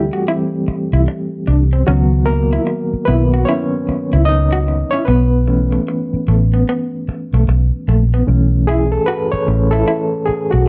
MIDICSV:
0, 0, Header, 1, 6, 480
1, 0, Start_track
1, 0, Tempo, 800000
1, 1120, Time_signature, 4, 2, 24, 8
1, 6410, End_track
2, 0, Start_track
2, 0, Title_t, "Clean electric guitar"
2, 0, Program_c, 0, 27
2, 79, Note_on_c, 0, 66, 68
2, 131, Note_off_c, 0, 66, 0
2, 170, Note_on_c, 0, 64, 73
2, 258, Note_off_c, 0, 64, 0
2, 560, Note_on_c, 0, 64, 73
2, 612, Note_off_c, 0, 64, 0
2, 884, Note_on_c, 0, 62, 75
2, 975, Note_off_c, 0, 62, 0
2, 1037, Note_on_c, 0, 60, 72
2, 1089, Note_off_c, 0, 60, 0
2, 1126, Note_on_c, 0, 61, 80
2, 1216, Note_off_c, 0, 61, 0
2, 1516, Note_on_c, 0, 64, 70
2, 1569, Note_off_c, 0, 64, 0
2, 1846, Note_on_c, 0, 64, 71
2, 1935, Note_off_c, 0, 64, 0
2, 2002, Note_on_c, 0, 66, 62
2, 2053, Note_off_c, 0, 66, 0
2, 2092, Note_on_c, 0, 64, 74
2, 2180, Note_off_c, 0, 64, 0
2, 2477, Note_on_c, 0, 64, 72
2, 2530, Note_off_c, 0, 64, 0
2, 2715, Note_on_c, 0, 66, 66
2, 2768, Note_off_c, 0, 66, 0
2, 2959, Note_on_c, 0, 64, 70
2, 3011, Note_off_c, 0, 64, 0
2, 3047, Note_on_c, 0, 59, 77
2, 3137, Note_off_c, 0, 59, 0
2, 3434, Note_on_c, 0, 57, 68
2, 3487, Note_off_c, 0, 57, 0
2, 3770, Note_on_c, 0, 57, 78
2, 3858, Note_off_c, 0, 57, 0
2, 3922, Note_on_c, 0, 59, 65
2, 3973, Note_off_c, 0, 59, 0
2, 4014, Note_on_c, 0, 59, 75
2, 4101, Note_off_c, 0, 59, 0
2, 4405, Note_on_c, 0, 57, 72
2, 4455, Note_off_c, 0, 57, 0
2, 4732, Note_on_c, 0, 57, 71
2, 4820, Note_off_c, 0, 57, 0
2, 4883, Note_on_c, 0, 59, 73
2, 4934, Note_off_c, 0, 59, 0
2, 5212, Note_on_c, 0, 64, 72
2, 5300, Note_off_c, 0, 64, 0
2, 5448, Note_on_c, 0, 66, 72
2, 5537, Note_off_c, 0, 66, 0
2, 5836, Note_on_c, 0, 64, 72
2, 5889, Note_off_c, 0, 64, 0
2, 5926, Note_on_c, 0, 64, 74
2, 6016, Note_off_c, 0, 64, 0
2, 6315, Note_on_c, 0, 66, 70
2, 6368, Note_off_c, 0, 66, 0
2, 6410, End_track
3, 0, Start_track
3, 0, Title_t, "Reed electric piano"
3, 0, Program_c, 1, 4
3, 0, Control_c, 1, 64, 127
3, 0, Note_on_c, 1, 52, 54
3, 0, Note_on_c, 1, 55, 59
3, 0, Note_on_c, 1, 57, 77
3, 0, Note_on_c, 1, 60, 60
3, 0, Note_on_c, 1, 67, 73
3, 0, Note_on_c, 1, 69, 93
3, 156, Note_off_c, 1, 55, 0
3, 162, Note_off_c, 1, 52, 0
3, 162, Note_on_c, 1, 52, 42
3, 163, Note_on_c, 1, 55, 40
3, 166, Note_off_c, 1, 60, 0
3, 166, Note_on_c, 1, 60, 48
3, 377, Note_off_c, 1, 52, 0
3, 378, Note_off_c, 1, 55, 0
3, 379, Note_off_c, 1, 60, 0
3, 854, Note_off_c, 1, 67, 0
3, 1120, Note_on_c, 1, 66, 82
3, 1124, Note_on_c, 1, 51, 56
3, 1127, Control_c, 1, 64, 0
3, 1128, Note_off_c, 1, 69, 0
3, 1129, Note_on_c, 1, 54, 73
3, 1130, Note_off_c, 1, 57, 0
3, 1133, Note_on_c, 1, 59, 60
3, 1239, Control_c, 1, 64, 127
3, 1343, Note_off_c, 1, 66, 0
3, 1350, Note_off_c, 1, 54, 0
3, 1354, Note_on_c, 1, 70, 88
3, 1368, Note_on_c, 1, 58, 64
3, 1820, Note_off_c, 1, 58, 0
3, 1832, Note_on_c, 1, 71, 87
3, 1837, Note_off_c, 1, 51, 0
3, 1842, Note_off_c, 1, 59, 0
3, 1844, Note_on_c, 1, 51, 45
3, 1845, Note_on_c, 1, 54, 40
3, 1849, Note_on_c, 1, 59, 71
3, 1852, Note_off_c, 1, 70, 0
3, 2058, Note_off_c, 1, 51, 0
3, 2059, Note_off_c, 1, 54, 0
3, 2068, Note_off_c, 1, 59, 0
3, 2071, Note_on_c, 1, 73, 88
3, 2083, Note_off_c, 1, 71, 0
3, 2090, Note_on_c, 1, 61, 71
3, 2532, Note_off_c, 1, 73, 0
3, 2541, Note_off_c, 1, 61, 0
3, 2551, Note_on_c, 1, 75, 100
3, 2574, Note_on_c, 1, 63, 75
3, 2934, Note_off_c, 1, 63, 0
3, 2944, Note_on_c, 1, 73, 91
3, 2958, Note_off_c, 1, 75, 0
3, 2964, Note_on_c, 1, 61, 72
3, 3030, Note_off_c, 1, 73, 0
3, 3030, Note_on_c, 1, 71, 88
3, 3041, Note_off_c, 1, 61, 0
3, 3049, Control_c, 1, 64, 0
3, 3052, Note_on_c, 1, 59, 71
3, 3163, Control_c, 1, 64, 127
3, 3284, Note_on_c, 1, 52, 51
3, 3286, Note_on_c, 1, 57, 46
3, 3290, Note_on_c, 1, 61, 57
3, 3624, Note_off_c, 1, 52, 0
3, 3626, Note_off_c, 1, 57, 0
3, 3628, Note_off_c, 1, 61, 0
3, 4451, Note_off_c, 1, 71, 0
3, 4462, Note_off_c, 1, 59, 0
3, 4961, Note_on_c, 1, 52, 55
3, 4963, Note_on_c, 1, 57, 50
3, 4968, Control_c, 1, 64, 0
3, 4968, Note_on_c, 1, 61, 61
3, 5081, Control_c, 1, 64, 127
3, 5204, Note_on_c, 1, 68, 81
3, 5351, Note_on_c, 1, 69, 77
3, 5357, Note_off_c, 1, 68, 0
3, 5434, Note_off_c, 1, 69, 0
3, 5437, Note_on_c, 1, 71, 93
3, 5590, Note_on_c, 1, 73, 91
3, 5594, Note_off_c, 1, 71, 0
3, 5657, Note_off_c, 1, 52, 0
3, 5658, Note_off_c, 1, 57, 0
3, 5660, Note_off_c, 1, 61, 0
3, 5680, Note_on_c, 1, 52, 46
3, 5684, Note_on_c, 1, 57, 42
3, 5685, Note_on_c, 1, 61, 51
3, 5825, Note_on_c, 1, 69, 87
3, 5837, Note_off_c, 1, 73, 0
3, 5896, Note_off_c, 1, 52, 0
3, 5898, Note_off_c, 1, 57, 0
3, 5899, Note_off_c, 1, 61, 0
3, 6154, Note_on_c, 1, 68, 79
3, 6167, Note_off_c, 1, 69, 0
3, 6305, Note_on_c, 1, 66, 76
3, 6312, Note_off_c, 1, 68, 0
3, 6410, Note_off_c, 1, 66, 0
3, 6410, End_track
4, 0, Start_track
4, 0, Title_t, "Fingered electric bass"
4, 0, Program_c, 2, 33
4, 558, Note_on_c, 2, 36, 75
4, 633, Note_off_c, 2, 36, 0
4, 888, Note_on_c, 2, 36, 78
4, 1094, Note_off_c, 2, 36, 0
4, 1129, Note_on_c, 2, 37, 101
4, 1543, Note_off_c, 2, 37, 0
4, 1851, Note_on_c, 2, 35, 81
4, 2055, Note_off_c, 2, 35, 0
4, 2480, Note_on_c, 2, 37, 80
4, 2894, Note_off_c, 2, 37, 0
4, 3049, Note_on_c, 2, 35, 90
4, 3463, Note_off_c, 2, 35, 0
4, 3769, Note_on_c, 2, 33, 78
4, 3974, Note_off_c, 2, 33, 0
4, 4400, Note_on_c, 2, 35, 72
4, 4474, Note_off_c, 2, 35, 0
4, 4489, Note_on_c, 2, 35, 81
4, 4616, Note_off_c, 2, 35, 0
4, 4728, Note_on_c, 2, 34, 82
4, 4934, Note_off_c, 2, 34, 0
4, 4968, Note_on_c, 2, 35, 91
4, 5383, Note_off_c, 2, 35, 0
4, 5688, Note_on_c, 2, 33, 89
4, 5894, Note_off_c, 2, 33, 0
4, 6321, Note_on_c, 2, 35, 74
4, 6394, Note_off_c, 2, 35, 0
4, 6410, End_track
5, 0, Start_track
5, 0, Title_t, "Muted clean electric guitar strokes"
5, 408, Note_on_c, 9, 29, 39
5, 468, Note_off_c, 9, 29, 0
5, 649, Note_on_c, 9, 29, 39
5, 709, Note_off_c, 9, 29, 0
5, 1362, Note_on_c, 9, 29, 42
5, 1422, Note_off_c, 9, 29, 0
5, 1601, Note_on_c, 9, 29, 43
5, 1661, Note_off_c, 9, 29, 0
5, 2333, Note_on_c, 9, 29, 42
5, 2393, Note_off_c, 9, 29, 0
5, 2809, Note_on_c, 9, 29, 44
5, 2869, Note_off_c, 9, 29, 0
5, 3285, Note_on_c, 9, 29, 38
5, 3345, Note_off_c, 9, 29, 0
5, 3530, Note_on_c, 9, 29, 42
5, 3590, Note_off_c, 9, 29, 0
5, 4254, Note_on_c, 9, 29, 37
5, 4314, Note_off_c, 9, 29, 0
5, 4494, Note_on_c, 9, 29, 40
5, 4554, Note_off_c, 9, 29, 0
5, 5689, Note_on_c, 9, 29, 39
5, 5749, Note_off_c, 9, 29, 0
5, 6165, Note_on_c, 9, 29, 41
5, 6225, Note_off_c, 9, 29, 0
5, 6410, End_track
6, 0, Start_track
6, 0, Title_t, "Muted fingered electric bass strokes"
6, 408, Note_on_c, 9, 29, 43
6, 468, Note_off_c, 9, 29, 0
6, 1760, Note_on_c, 9, 29, 44
6, 1820, Note_off_c, 9, 29, 0
6, 2330, Note_on_c, 9, 29, 40
6, 2390, Note_off_c, 9, 29, 0
6, 3681, Note_on_c, 9, 29, 43
6, 3741, Note_off_c, 9, 29, 0
6, 4250, Note_on_c, 9, 29, 39
6, 4310, Note_off_c, 9, 29, 0
6, 5600, Note_on_c, 9, 29, 41
6, 5660, Note_off_c, 9, 29, 0
6, 6172, Note_on_c, 9, 29, 38
6, 6232, Note_off_c, 9, 29, 0
6, 6410, End_track
0, 0, End_of_file